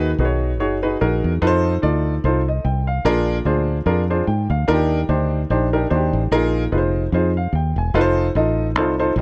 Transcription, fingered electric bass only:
Already playing: D#2
0.18 B1
0.60 F#1
1.01 A#1
1.24 E2
1.42 F2
1.83 D2
2.24 C2
2.65 C2
3.05 A#1
3.45 D2
3.86 F2
4.27 G#2
4.50 D2
4.68 D#2
5.09 D2
5.50 A#1
5.91 D#2
6.13 A1
6.31 A#1
6.72 F1
7.12 F2
7.53 D#2
7.76 E1
7.94 F1
8.35 A1
8.75 C2
9.16 A#1

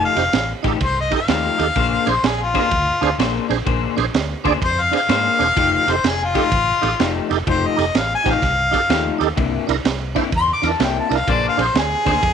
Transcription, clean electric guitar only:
Already playing: F3 A3 D#4 G4
0.17 muted clean electric guitar stroke
0.33 muted clean electric guitar stroke
0.64 F3 A3 D#4 G4
0.81 muted clean electric guitar stroke
1.12 muted clean electric guitar stroke
1.28 F3 A3 D#4 G4
1.59 muted clean electric guitar stroke
1.76 A#3 D4 G#4 C5
2.07 muted clean electric guitar stroke
2.24 muted clean electric guitar stroke
2.55 A#3 D4 G#4 C5
2.71 muted clean electric guitar stroke
3.02 muted clean electric guitar stroke
3.19 A#3 D4 G#4 C5
3.49 muted clean electric guitar stroke
3.66 A#3 D4 G#4 C5
3.97 muted clean electric guitar stroke
4.14 muted clean electric guitar stroke
4.45 A#3 D4 G#4 C5
4.61 muted clean electric guitar stroke
4.92 muted clean electric guitar stroke
5.09 A#3 D4 G#4 C5
5.40 muted clean electric guitar stroke
5.56 F3 A3 D#4 G4
5.88 muted clean electric guitar stroke
6.04 muted clean electric guitar stroke
6.35 F3 A3 D#4 G4
6.52 muted clean electric guitar stroke
6.83 muted clean electric guitar stroke
6.99 F3 A3 D#4 G4
7.31 muted clean electric guitar stroke
7.47 F3 A3 D#4 G4
7.78 muted clean electric guitar stroke
7.95 muted clean electric guitar stroke
8.26 F3 A3 D#4 G4
8.42 muted clean electric guitar stroke
8.73 muted clean electric guitar stroke
8.89 F3 A3 D#4 G4
9.20 muted clean electric guitar stroke
9.36 C3 A#3 D4 E4
9.68 muted clean electric guitar stroke
9.85 muted clean electric guitar stroke
10.16 C3 A#3 D4 E4
10.32 muted clean electric guitar stroke
10.63 muted clean electric guitar stroke
10.80 C3 A#3 D4 E4
11.11 muted clean electric guitar stroke
11.28 A#3 D4 G#4 C5
11.59 muted clean electric guitar stroke
11.76 muted clean electric guitar stroke
12.07 A#3 D4 G#4 C5
12.23 muted clean electric guitar stroke

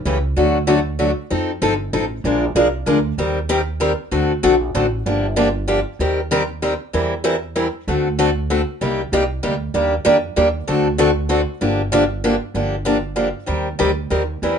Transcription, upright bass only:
0.06 C#2
0.37 D2
1.31 F2
1.62 G1
1.93 A1
2.24 A#1
2.55 C2
2.86 D2
3.18 D#2
4.12 D2
4.43 A#1
4.75 A1
5.06 G1
5.99 D#2
6.94 E2
7.88 D2
8.81 C2
9.12 C2
9.44 D2
9.74 D#2
10.05 F2
10.37 D#2
10.69 D2
11.61 G1
12.54 G1
13.48 D#2
13.80 D2
14.11 D#2
14.42 E2

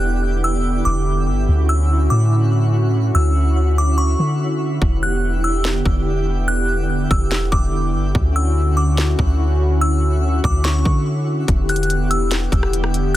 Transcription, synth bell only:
Already playing: F#6
0.44 E6
0.85 D6
1.69 E6
2.10 D6
3.15 E6
3.78 D6
3.98 C#6
5.03 F#6
5.44 E6
6.48 F#6
7.11 E6
7.52 D6
8.36 E6
8.77 D6
9.81 E6
10.45 D6
10.64 C#6
11.69 F#6
12.11 E6

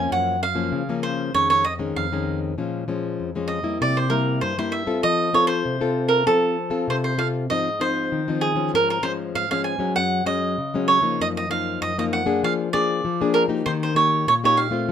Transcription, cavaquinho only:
Already playing: G#5
0.12 F#5
0.43 F5
1.03 C5
1.34 C#5
1.50 C#5
1.65 D#5
1.96 F5
3.48 D#5
3.82 D5
3.97 C5
4.10 A#4
4.41 C5
4.59 C5
4.72 E5
5.03 D#5
5.34 C#5
5.47 C5
6.08 A#4
6.27 A4
6.90 C5
7.04 C5
7.19 F5
7.50 D#5
7.81 C5
8.41 G#4
8.75 A#4
8.90 A#4
9.03 C5
9.35 F5
9.51 F5
9.64 G#5
9.96 F#5
10.26 D#5
10.88 C#5
11.21 D#5
11.37 D#5
11.51 F5
11.82 D#5
11.99 D#5
12.13 F#5
12.44 F5
12.73 D5
13.34 A#4
13.66 C5
13.83 C5
13.96 C#5
14.28 C#5
14.45 C#5
14.57 F5

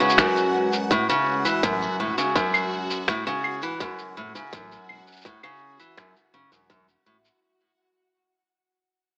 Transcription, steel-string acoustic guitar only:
0.00 C#3
0.18 F#2
0.92 A2
1.09 C#3
1.45 E3
1.64 F#2
2.00 A2
2.18 C#3
2.36 F#2
3.08 A2
3.27 C#3
3.63 E3
3.81 F#2
4.17 A2
4.35 C#3
4.53 F#2
5.26 A2
5.44 C#3
5.79 E3
5.98 F#2
6.34 C#3
6.52 F#2
6.70 F#2
7.06 A2

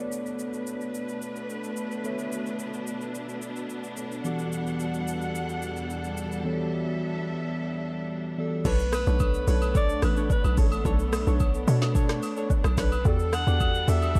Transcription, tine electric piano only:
Already playing: B3 A4 C#5 D5
2.04 B3 A4 C#5 E5
3.97 B3 A4 C#5 D5
4.24 E3 B3 F#4 G4 A4 D5
6.44 E3 B3 F#4 G4 A4 C#5
6.53 D5
8.38 E3 B3 F#4 G4 A4 D5

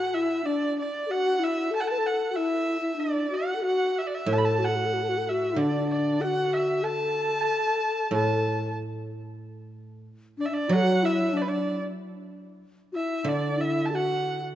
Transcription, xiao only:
Already playing: F#4
0.14 E4
0.45 D4
1.06 F#4 A4
1.39 E4
1.71 A4
1.84 A4
1.92 B4
1.98 A4
2.32 F#4
2.37 E4
2.81 E4
2.96 D4
3.30 F#4
3.56 A4
3.62 F#4
4.28 A4
4.59 F#4
4.69 A4
4.76 F#4
4.86 A4
4.94 F#4
5.03 A4
5.09 F#4
5.18 A4
5.26 A4
5.31 F#4
5.57 D4
6.21 F#4 A4
6.83 A4
8.12 A4
10.38 D4
10.50 D4
10.69 F#4
10.75 A4
10.83 F#4
11.03 E4
11.33 D4
11.47 D4
12.92 E4 F#4
13.24 D4
13.58 E4
13.91 F#4 A4

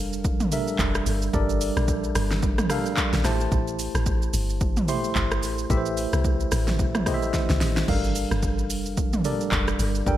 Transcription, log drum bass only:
Already playing: F1
0.79 F1
1.06 G1
1.34 G1
1.77 A#1
2.15 G1
3.13 A#1
3.25 A1
3.52 A1
3.95 A1
4.34 G1
5.16 G1
5.43 A1
5.70 A1
6.13 C2
6.52 A1
7.50 C2
7.61 A1
7.88 G1
8.31 G1
8.70 F1
9.52 F1
9.79 G1
10.07 G1

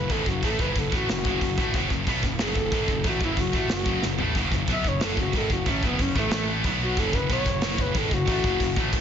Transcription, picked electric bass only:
0.10 G#1
0.27 F#1
0.43 A1
0.59 F#1
0.76 F#1
0.93 A1
1.11 F#1
1.25 F#1
1.41 F#1
1.58 A1
1.74 F#1
1.90 F#1
2.07 B1
2.24 F#1
2.40 F#1
2.56 F#1
2.72 G#1
2.88 F#1
3.05 A1
3.21 F#1
3.37 F#1
3.54 A1
3.71 F#1
3.86 F#1
4.05 F#1
4.21 A1
4.36 F#1
4.52 F#1
4.68 B1
4.85 F#1
5.03 F#1
5.17 F#1
5.34 G#1
5.50 F#1
5.66 A1
5.83 F#1
5.99 F#1
6.16 A1
6.32 A1
6.65 B1
6.97 F#1
7.14 F#1
7.30 B1
7.46 F#1
7.63 F#1
7.79 F#1
7.95 G#1
8.11 F#1
8.27 A1
8.44 F#1
8.60 F#1
8.77 A1

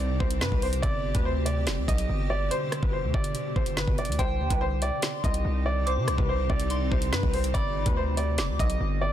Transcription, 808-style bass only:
Already playing: C2
0.20 C2
0.41 G2
0.52 C2
0.83 G1
1.15 D2
1.67 F1
1.78 D2
1.88 B1
2.09 G1
2.83 G1
3.04 D2
3.14 G1
3.56 G1
3.88 G1
4.09 D2
4.19 C2
4.40 D#2
4.50 C2
5.24 C2
5.45 C2
5.97 C3
6.08 C2
6.18 C2
6.50 C2
6.92 C2
7.13 G2
7.23 C2
7.55 G1
7.86 D2
8.38 F1
8.49 D2
8.59 B1
8.80 G1

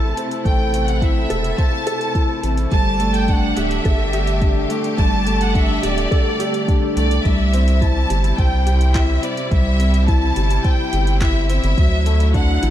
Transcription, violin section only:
Already playing: A5
0.46 G5
0.88 F#5
1.02 E5
1.59 A5
2.73 A5
3.15 G5
3.29 F#5
3.58 E5
4.98 A5
5.41 F#5
5.55 E5
5.84 D5
6.97 D5
7.25 E5
7.82 A5
8.39 G5
8.96 E5
9.24 D5
9.52 E5
10.09 A5
10.65 G5
11.21 E5
11.49 E5
12.34 F#5

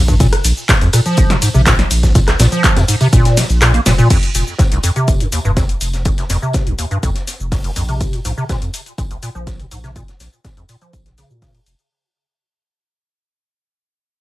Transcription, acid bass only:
0.08 G2
0.20 A#2
0.69 A#2
0.81 A#1
0.93 A#2
1.06 F3
1.30 A#2
1.42 G#2
1.54 C3
1.66 A#2
2.15 A#2
2.28 A#1
2.39 A#2
2.52 F3
2.76 A#2
2.88 G#2
3.01 C3
3.13 A#2
3.37 C3
3.62 A#2
3.74 A#3
3.86 A#2
3.98 A#2
4.10 F2
4.59 F2
4.72 F1
4.83 F2
4.96 C3
5.20 F2
5.32 D#2
5.45 G2
5.57 F2
6.05 F2
6.18 F1
6.30 F2
6.42 C3
6.67 F2
6.79 D#2
6.91 G2
7.03 F2
7.52 F2
7.64 F1
7.76 F2
7.89 C3
8.13 A#2
8.25 G#2
8.37 C3
8.49 A#2
8.98 A#2
9.11 A#1
9.23 A#2
9.35 F3
9.60 A#2
9.71 G#2
9.84 C3
9.96 A#2
10.45 A#2
10.57 A#1
10.69 A#2
10.82 F3
11.06 A#2
11.18 C#3
11.30 A#2
11.42 C#3

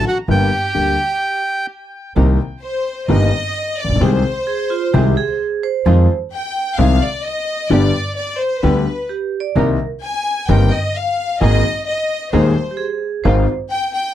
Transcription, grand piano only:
0.28 G1 G2 D3 G3 A#3 G4
0.75 D2 D3 G3 A#3 G4
2.16 C2 C3 D#3 A#3 C4 G4
3.09 G1 G2 D#3 A#3 C4 G4
3.84 A1
3.90 A#1
3.96 B1
4.01 C2 C3 D#3 G#3 C4 G4
4.94 C2 C3 D#3 G#3 C4 G4
5.86 F2 D#3 F3 G#3 C4 F4
6.78 C2 C3 D#3 G#3 C4 F4
7.70 G1 G2 D3 G3 B3 G4
8.63 D2 D3 G3 B3 G4
9.56 C2 C3 D#3 A#3 C4 G4
10.49 G1 G2 D#3 A#3 C4 G4
11.41 G#1 G#2 D#3 G#3 A#3 G#4
12.33 D#1 D#2 D#3 G#3 A#3 G#4
13.25 G#1 G#2 D#3 G#3 C4 F4

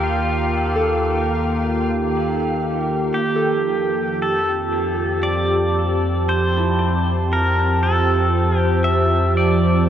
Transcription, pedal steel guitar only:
0.04 F4
3.14 G4
4.22 A4
5.23 D5
6.29 C5
7.33 A#4
7.83 A4
8.59 G4
8.84 E5
9.37 D5

